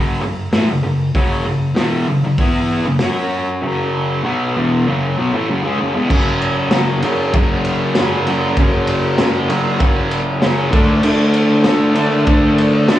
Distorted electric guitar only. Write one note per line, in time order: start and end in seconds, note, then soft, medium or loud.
0.00 0.20 F#2 medium
0.00 0.21 C#3 loud
0.00 0.22 F#3 loud
0.22 0.47 F#2 medium
0.22 0.47 C#3 medium
0.53 0.68 A2 medium
0.53 0.68 E3 medium
0.69 0.82 F#2 medium
0.69 0.83 C#3 medium
0.83 1.09 F#2 medium
0.83 1.09 C#3 medium
1.15 1.45 F#2 medium
1.15 1.45 C#3 medium
1.15 1.46 F#3 loud
1.46 1.71 F#2 medium
1.46 1.71 C#3 medium
1.75 2.06 E2 medium
1.75 2.07 B2 loud
1.75 2.07 E3 medium
2.08 2.23 F#2 medium
2.08 2.24 C#3 medium
2.24 2.39 F#2 medium
2.24 2.39 C#3 medium
2.39 2.85 E3 loud
2.39 2.85 B3 medium
2.39 2.85 E4 loud
2.86 3.01 F#2 medium
2.86 3.01 C#3 medium
3.02 3.62 F#3 medium
3.02 3.62 C#4 loud
3.02 3.63 F#4 loud
3.62 4.23 F#2 medium
3.62 4.24 C#3 loud
3.62 4.23 F#3 loud
4.24 4.54 B2 medium
4.24 4.55 F#3 medium
4.24 4.55 B3 loud
4.56 4.86 E2 medium
4.56 4.86 B2 loud
4.56 4.86 E3 loud
4.87 5.17 F#2 medium
4.87 5.17 C#3 loud
4.87 5.17 F#3 loud
5.17 5.32 B2 medium
5.17 5.32 F#3 loud
5.33 5.47 A2 medium
5.33 5.48 E3 loud
5.49 5.63 F#2 medium
5.49 5.62 C#3 loud
5.63 5.78 C#3 medium
5.63 5.79 G#3 medium
5.78 5.93 F#2 medium
5.78 5.94 C#3 loud
5.94 6.09 E2 medium
5.94 6.10 B2 medium
6.10 6.71 F#2 medium
6.10 6.71 C#3 loud
6.10 6.73 F#3 loud
6.72 7.02 F#2 medium
6.72 7.03 C#3 medium
6.72 7.04 F#3 loud
7.03 7.33 F#2 medium
7.03 7.34 C#3 loud
7.03 7.35 F#3 medium
7.34 7.97 F#2 loud
7.34 7.98 C#3 loud
7.34 7.99 F#3 loud
7.98 8.26 F#2 medium
7.98 8.27 C#3 medium
7.98 8.29 F#3 medium
8.27 8.58 F#2 medium
8.27 8.58 C#3 medium
8.27 8.60 F#3 loud
8.59 9.18 F#2 loud
8.59 9.19 C#3 medium
8.59 9.20 F#3 loud
9.19 9.48 F#2 medium
9.19 9.49 C#3 loud
9.19 9.51 F#3 loud
9.49 9.79 F#2 medium
9.49 9.79 C#3 medium
9.49 9.81 F#3 loud
9.80 10.41 F#2 loud
9.80 10.42 C#3 loud
9.80 10.43 F#3 loud
10.42 10.72 F#2 medium
10.42 10.71 C#3 loud
10.42 10.72 F#3 medium
10.71 11.02 D3 loud
10.71 11.03 A3 loud
10.71 11.03 D4 loud
11.03 11.63 D3 loud
11.03 11.64 A3 loud
11.03 11.65 D4 loud
11.64 11.93 D3 medium
11.64 11.94 A3 medium
11.64 11.95 D4 loud
11.94 12.24 D3 medium
11.94 12.26 A3 loud
11.94 12.26 D4 medium
12.26 12.88 D3 loud
12.26 12.89 A3 loud
12.26 12.90 D4 loud
12.90 12.99 D3 medium
12.90 12.99 A3 medium
12.90 12.99 D4 medium